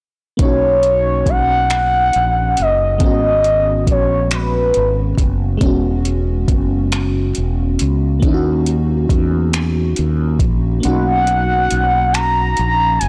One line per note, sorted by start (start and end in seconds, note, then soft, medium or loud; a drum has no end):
0.37 1.23 B1 medium
0.37 2.95 A#3 medium
0.37 2.96 C#4 medium
0.37 kick loud
0.37 closed hi-hat medium
0.41 2.98 D#4 soft
0.41 2.99 F#4 medium
0.41 1.31 C#5 loud
0.83 closed hi-hat soft
1.26 2.10 B1 medium
1.26 2.63 F#5 loud
1.26 kick medium
1.26 closed hi-hat medium
1.70 finger snap loud
1.70 closed hi-hat medium
2.13 2.54 A#1 medium
2.13 closed hi-hat soft
2.57 2.97 F#1 medium
2.57 closed hi-hat medium
2.62 3.03 D#5 medium
2.98 3.84 G#1 medium
2.98 5.56 G#3 medium
2.98 5.57 B3 soft
2.98 kick loud
2.98 closed hi-hat medium
3.03 5.59 C#4 medium
3.03 5.60 F#4 medium
3.03 3.85 D#5 loud
3.44 closed hi-hat soft
3.87 4.71 A#1 medium
3.87 4.29 C#5 medium
3.87 kick medium
3.87 closed hi-hat medium
4.31 5.26 B4 medium
4.31 finger snap loud
4.31 closed hi-hat medium
4.74 5.15 G#1 medium
4.74 closed hi-hat soft
5.18 5.57 F#1 medium
5.18 kick medium
5.18 closed hi-hat medium
5.57 8.16 G#3 medium
5.57 8.18 B3 medium
5.57 kick medium
5.57 closed hi-hat medium
5.62 6.44 E1 medium
5.62 8.19 C#4 medium
5.62 8.20 F#4 medium
6.05 closed hi-hat soft
6.48 7.31 F#1 medium
6.48 kick medium
6.48 closed hi-hat medium
6.92 finger snap medium
6.92 closed hi-hat medium
7.35 7.76 E1 medium
7.35 closed hi-hat soft
7.79 8.19 C#2 medium
7.79 closed hi-hat medium
8.20 10.78 A#3 medium
8.20 10.79 C#4 medium
8.20 kick loud
8.20 closed hi-hat medium
8.24 9.06 D#2 medium
8.24 10.80 D#4 medium
8.24 8.31 E4 medium
8.34 10.85 F#4 medium
8.66 closed hi-hat soft
9.09 9.92 E2 medium
9.09 kick medium
9.09 closed hi-hat medium
9.53 finger snap loud
9.53 closed hi-hat medium
9.96 10.37 D#2 medium
9.96 closed hi-hat soft
10.39 10.79 A#1 medium
10.39 kick medium
10.39 closed hi-hat medium
10.80 13.09 A#3 medium
10.80 13.09 C#4 medium
10.80 closed hi-hat medium
10.84 11.67 B1 loud
10.84 13.09 D#4 medium
10.84 13.09 F#4 medium
10.84 12.15 F#5 loud
11.27 closed hi-hat soft
11.71 12.54 B1 medium
11.71 closed hi-hat medium
12.13 13.00 A#5 loud
12.13 finger snap loud
12.13 closed hi-hat medium
12.57 12.97 A#1 medium
12.57 closed hi-hat soft
12.99 13.09 F#1 medium
12.99 13.09 G#5 medium
12.99 closed hi-hat medium